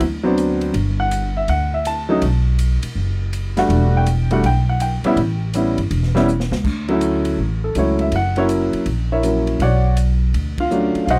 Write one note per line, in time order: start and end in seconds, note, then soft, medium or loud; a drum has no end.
0.00 0.70 D2 medium
0.00 ride medium
0.23 0.71 F#3 medium
0.23 0.71 B3 medium
0.23 0.72 C4 medium
0.23 0.72 D4 medium
0.38 hi-hat pedal medium
0.38 ride medium
0.61 ride soft
0.74 1.44 G1 medium
0.74 ride medium
1.00 1.33 F#5 medium
1.11 hi-hat pedal medium
1.11 ride medium
1.37 1.49 E5 medium
1.48 2.18 D2 medium
1.48 1.72 F#5 medium
1.48 ride medium
1.74 1.85 E5 medium
1.85 2.43 A5 medium
1.85 hi-hat pedal medium
1.85 ride medium
2.09 2.20 F#3 medium
2.09 2.21 A3 medium
2.09 2.21 C#4 medium
2.09 2.21 D#4 medium
2.22 2.79 B1 medium
2.22 ride medium
2.59 hi-hat pedal medium
2.59 ride medium
2.83 muted upright bass stroke soft
2.83 ride medium
2.95 3.66 F#1 medium
3.33 hi-hat pedal medium
3.33 ride medium
3.57 4.04 G3 medium
3.57 4.04 A3 medium
3.57 4.05 D4 medium
3.57 4.05 F#4 medium
3.57 snare soft
3.57 ride soft
3.69 4.39 E1 loud
3.69 ride medium
3.97 4.30 G5 medium
4.06 hi-hat pedal medium
4.06 ride medium
4.31 4.42 G3 medium
4.31 4.42 A3 medium
4.31 4.43 D4 medium
4.31 4.43 F#4 medium
4.31 4.44 F#5 medium
4.31 ride soft
4.43 5.00 B1 medium
4.43 4.68 G5 medium
4.43 ride medium
4.69 4.81 F#5 medium
4.80 5.38 G5 medium
4.80 hi-hat pedal medium
4.80 ride medium
5.03 5.16 G3 medium
5.03 5.16 B3 medium
5.03 5.16 C#4 medium
5.03 5.17 E4 medium
5.03 muted upright bass stroke soft
5.03 ride soft
5.16 5.74 A1 medium
5.16 ride medium
5.54 5.76 G3 medium
5.54 5.76 B3 medium
5.54 5.76 C#4 medium
5.54 5.76 E4 medium
5.54 hi-hat pedal medium
5.54 ride medium
5.78 5.90 G1 medium
5.78 ride soft
5.91 6.47 E1 medium
5.91 ride medium
6.03 snare soft
6.15 6.26 G3 medium
6.15 6.27 B3 medium
6.15 6.27 C#4 medium
6.15 6.27 E4 medium
6.15 snare soft
6.28 hi-hat pedal soft
6.40 snare medium
6.51 6.63 C#2 medium
6.51 snare medium
6.64 7.34 D2 medium
6.64 kick medium
6.64 crash medium
6.88 7.36 F#3 medium
6.88 7.36 A3 medium
6.88 7.36 C#4 medium
6.88 7.37 E4 medium
6.88 ride soft
7.01 hi-hat pedal medium
7.01 ride medium
7.25 ride medium
7.38 7.72 A1 medium
7.64 7.76 A4 medium
7.75 8.09 C#2 medium
7.75 8.12 F#3 medium
7.75 8.12 A3 medium
7.75 8.13 C#4 medium
7.75 8.13 E4 medium
7.75 8.00 C#5 medium
7.75 hi-hat pedal medium
7.75 ride medium
7.99 8.13 E5 medium
7.99 ride soft
8.12 8.69 F#1 medium
8.12 8.37 F#5 medium
8.12 ride medium
8.36 8.84 F#3 medium
8.36 8.84 A#3 medium
8.36 8.84 C#4 medium
8.36 8.85 E4 medium
8.36 8.45 C#5 medium
8.36 ride soft
8.49 hi-hat pedal medium
8.49 ride medium
8.73 muted upright bass stroke soft
8.73 ride soft
8.86 9.56 A#1 medium
8.86 ride medium
9.12 9.23 E4 medium
9.12 9.57 A#4 medium
9.12 9.57 C#5 medium
9.12 9.57 E5 medium
9.23 9.60 F#3 soft
9.23 9.60 A#3 soft
9.23 9.60 C#4 soft
9.23 9.61 E4 medium
9.23 hi-hat pedal medium
9.23 ride medium
9.47 ride soft
9.59 10.30 B1 medium
9.59 9.95 F#4 medium
9.59 9.95 C#5 medium
9.59 9.96 D5 medium
9.59 9.95 F#5 medium
9.59 ride medium
9.97 hi-hat pedal medium
9.97 ride medium
10.34 10.91 D2 medium
10.34 ride medium
10.58 11.05 F4 medium
10.58 11.04 F5 medium
10.58 kick medium
10.58 ride medium
10.71 11.08 F#3 medium
10.71 11.08 A3 medium
10.71 11.08 C#4 medium
10.71 11.08 D4 medium
10.71 hi-hat pedal soft
10.95 muted upright bass stroke soft
10.95 ride soft
11.05 11.19 B1 medium
11.05 11.08 F5 medium
11.05 ride medium
11.10 11.19 F#4 medium
11.10 11.19 C5 medium
11.10 11.19 D#5 medium
11.10 11.19 F#5 medium